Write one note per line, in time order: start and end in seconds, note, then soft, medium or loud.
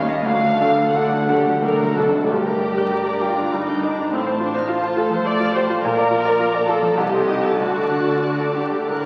0.00 0.21 D#2 medium
0.00 0.28 D#2 medium
0.00 0.21 D#3 medium
0.00 0.21 G3 soft
0.00 0.21 G3 loud
0.00 0.20 C#4 medium
0.00 0.21 C#4 medium
0.00 0.21 D#4 medium
0.00 0.21 C#5 medium
0.00 0.10 F5 medium
0.07 0.25 C#4 soft
0.07 0.25 G4 medium
0.07 0.25 D#5 soft
0.07 0.26 D#5 medium
0.07 0.27 D#5 medium
0.24 0.88 D2 medium
0.24 0.59 D2 medium
0.24 2.10 D2 medium
0.24 1.94 D3 medium
0.24 0.32 D3 soft
0.24 0.42 F#3 medium
0.24 1.94 A3 medium
0.24 0.42 D4 medium
0.24 1.95 D4 medium
0.24 0.42 F#4 medium
0.24 1.95 A4 medium
0.24 0.42 D5 medium
0.24 0.94 F5 medium
0.24 0.98 F5 medium
0.34 0.42 D3 soft
0.43 0.50 D3 soft
0.43 0.61 A3 medium
0.43 0.61 F#4 medium
0.43 0.60 A4 medium
0.43 0.61 F#5 soft
0.52 0.59 D3 soft
0.60 0.69 D3 soft
0.60 0.78 F#3 medium
0.60 0.92 A3 soft
0.60 0.92 D4 soft
0.60 0.79 D4 soft
0.60 0.78 F#4 soft
0.60 0.92 A4 medium
0.60 0.78 D5 medium
0.70 0.77 D3 soft
0.78 0.86 D3 soft
0.78 0.95 A3 soft
0.78 0.96 F#4 soft
0.78 0.96 A4 medium
0.78 0.96 F#5 soft
0.87 0.94 D3 soft
0.94 1.26 D2 medium
0.94 1.02 D3 soft
0.94 1.11 F#3 medium
0.94 1.25 A3 soft
0.94 1.25 D4 medium
0.94 1.11 D4 medium
0.94 1.11 F#4 medium
0.94 1.26 A4 medium
0.94 1.11 D5 medium
0.94 1.63 F#5 medium
0.94 1.64 F#5 medium
1.03 1.11 D3 soft
1.12 1.19 D3 medium
1.12 1.29 A3 medium
1.12 1.29 F#4 medium
1.12 1.29 A4 soft
1.12 1.29 F#5 medium
1.20 1.28 D3 medium
1.28 1.63 D#2 medium
1.28 1.36 D3 medium
1.28 1.46 F#3 soft
1.28 1.59 A3 medium
1.28 1.60 D4 medium
1.28 1.46 D4 soft
1.28 1.47 F#4 medium
1.28 1.61 G4 medium
1.28 1.60 A4 medium
1.28 1.47 D5 medium
1.38 1.45 D3 medium
1.46 1.53 D3 medium
1.46 1.63 A3 soft
1.46 1.63 F#4 soft
1.46 1.64 A4 soft
1.46 1.64 F#5 soft
1.55 1.62 D3 medium
1.62 1.98 D2 medium
1.62 1.70 D3 medium
1.62 1.79 F#3 medium
1.62 1.94 A3 medium
1.62 1.94 D4 medium
1.62 1.79 D4 medium
1.62 1.80 F#4 medium
1.62 1.95 A4 medium
1.62 1.98 A#4 medium
1.62 1.80 D5 medium
1.71 1.80 D3 medium
1.80 1.88 D3 medium
1.80 1.98 A3 soft
1.80 1.98 F#4 medium
1.80 1.99 A4 medium
1.80 1.98 F#5 medium
1.89 1.98 D3 medium
1.97 2.31 C2 medium
1.97 2.06 D3 medium
1.97 2.16 F#3 medium
1.97 2.28 A3 soft
1.97 2.28 D4 medium
1.97 2.15 D4 medium
1.97 2.15 F#4 medium
1.97 2.23 A4 medium
1.97 2.28 A4 medium
1.97 2.15 D5 medium
2.07 2.14 D3 medium
2.14 2.22 D3 medium
2.14 2.31 A3 medium
2.14 2.31 F#4 medium
2.14 2.32 A4 soft
2.14 2.32 F#5 soft
2.23 2.31 D3 loud
2.23 2.32 A4 medium
2.30 4.08 G1 medium
2.30 4.08 G2 medium
2.30 3.23 G4 medium
2.30 4.08 D5 medium
2.30 2.46 G5 soft
2.30 4.08 A#5 medium
2.46 2.72 A#4 medium
2.46 2.62 A#5 soft
2.61 2.87 G4 soft
2.61 2.78 D6 soft
2.77 3.02 A#4 soft
2.77 2.93 G6 soft
2.91 3.16 G4 medium
2.91 3.07 D6 medium
3.07 3.32 A#4 soft
3.07 3.23 A#5 soft
3.22 3.53 F4 medium
3.22 3.47 G4 medium
3.22 3.38 G5 soft
3.36 3.61 D4 soft
3.36 3.53 A#5 soft
3.52 3.77 G3 medium
3.52 3.84 D#4 medium
3.52 3.68 D6 medium
3.68 3.92 D4 soft
3.68 3.83 G6 soft
3.83 4.12 D4 medium
3.83 3.98 D#4 soft
3.83 3.98 D6 medium
3.98 4.13 D4 soft
3.98 4.12 A#5 soft
4.12 5.80 A1 medium
4.12 5.80 A2 medium
4.12 4.41 C4 medium
4.12 5.80 C5 medium
4.12 4.26 F5 soft
4.12 5.81 A5 medium
4.27 4.50 C5 medium
4.27 4.41 A5 soft
4.40 4.55 D4 medium
4.40 4.63 F4 soft
4.40 4.55 C6 soft
4.54 4.70 D#4 medium
4.54 4.78 C5 medium
4.54 4.69 F6 medium
4.69 4.92 F4 medium
4.69 4.98 F4 medium
4.69 4.84 C6 medium
4.83 5.06 C5 medium
4.83 4.98 A5 soft
4.97 5.20 F4 medium
4.97 5.12 A4 medium
4.97 5.12 F5 medium
5.10 5.34 F3 medium
5.10 5.27 C5 medium
5.10 5.27 A5 medium
5.25 5.49 A3 medium
5.25 5.55 D5 loud
5.25 5.41 C6 medium
5.40 5.63 F4 medium
5.40 5.55 F6 medium
5.53 5.69 G4 soft
5.53 5.83 C5 medium
5.53 5.68 C6 medium
5.68 5.83 F4 medium
5.68 5.83 A5 medium
5.82 6.96 A#1 medium
5.82 6.95 A#2 medium
5.82 6.66 A#4 loud
5.82 6.95 D5 medium
5.82 5.95 F5 medium
5.82 6.95 A#5 medium
5.97 6.19 D5 medium
5.97 6.11 A#5 medium
6.09 6.33 F4 medium
6.09 6.24 D6 medium
6.24 6.48 D5 medium
6.24 6.39 F6 medium
6.39 6.62 F4 medium
6.39 6.53 D6 medium
6.52 6.77 D5 medium
6.52 6.67 A#5 medium
6.67 6.92 F4 medium
6.67 6.98 A4 medium
6.67 6.82 F5 medium
6.82 6.98 F3 medium
6.82 6.98 A#5 medium
6.97 7.58 C2 medium
6.97 7.60 C2 medium
6.97 7.60 C3 medium
6.97 7.60 G4 medium
6.97 7.60 D#5 medium
6.97 7.12 A5 medium
6.97 9.06 A5 medium
7.12 7.38 A4 medium
7.12 7.28 C6 medium
7.28 7.54 D#4 soft
7.28 7.44 D#6 medium
7.44 7.60 A4 medium
7.44 7.60 A6 soft
7.59 9.06 D2 medium
7.59 9.06 D3 medium
7.59 8.52 D3 medium
7.59 8.54 F#4 medium
7.59 9.06 D5 soft
7.59 7.74 A5 soft
7.75 8.01 A4 soft
7.75 7.91 D6 soft
7.91 8.17 D4 soft
7.91 8.07 F#6 soft
8.07 8.33 A4 soft
8.07 8.24 A6 soft
8.23 8.49 D4 soft
8.23 8.40 F#6 soft
8.39 8.66 A4 soft
8.39 8.57 D6 soft
8.56 8.82 D4 soft
8.56 8.89 G4 medium
8.56 8.73 A5 soft
8.71 8.98 A3 soft
8.71 8.89 D6 soft
8.89 9.06 A2 soft
8.89 9.06 A#4 medium
8.89 9.05 F#6 soft